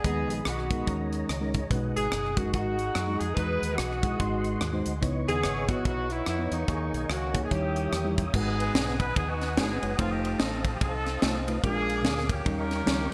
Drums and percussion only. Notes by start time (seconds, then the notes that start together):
0.04 kick, closed hi-hat
0.30 closed hi-hat
0.45 cross-stick, closed hi-hat
0.59 cross-stick
0.71 kick, closed hi-hat
0.87 kick, closed hi-hat
1.13 cross-stick, closed hi-hat
1.29 cross-stick, closed hi-hat
1.54 kick, closed hi-hat
1.71 kick, closed hi-hat
1.97 closed hi-hat
2.12 cross-stick, closed hi-hat
2.25 cross-stick
2.37 kick, closed hi-hat
2.54 kick, closed hi-hat
2.79 closed hi-hat
2.95 cross-stick, closed hi-hat
3.21 closed hi-hat
3.37 kick, closed hi-hat
3.63 closed hi-hat
3.78 cross-stick, closed hi-hat
3.92 cross-stick
4.03 kick, closed hi-hat
4.20 kick, closed hi-hat
4.44 closed hi-hat
4.61 cross-stick, closed hi-hat
4.86 closed hi-hat
5.03 kick, closed hi-hat
5.28 closed hi-hat
5.44 cross-stick, closed hi-hat
5.68 kick, closed hi-hat
5.85 kick, closed hi-hat
6.10 cross-stick, closed hi-hat
6.26 cross-stick, closed hi-hat
6.52 closed hi-hat
6.68 kick, closed hi-hat
6.94 closed hi-hat
7.10 cross-stick, closed hi-hat
7.35 kick, closed hi-hat
7.51 kick, closed hi-hat
7.76 closed hi-hat
7.93 cross-stick, closed hi-hat
8.18 kick, closed hi-hat
8.34 kick, crash
8.60 ride
8.75 snare, ride
8.88 snare
9.00 kick, ride
9.16 kick, ride
9.41 snare, ride
9.57 snare, ride
9.83 ride
9.99 kick, ride
10.25 ride
10.40 snare, ride
10.65 kick, ride
10.81 kick, ride
11.06 snare, ride
11.22 snare, ride
11.48 ride
11.64 kick, ride
11.89 ride
12.05 snare, ride
12.18 snare
12.29 kick, ride
12.46 kick, ride
12.71 snare, ride
12.87 snare, ride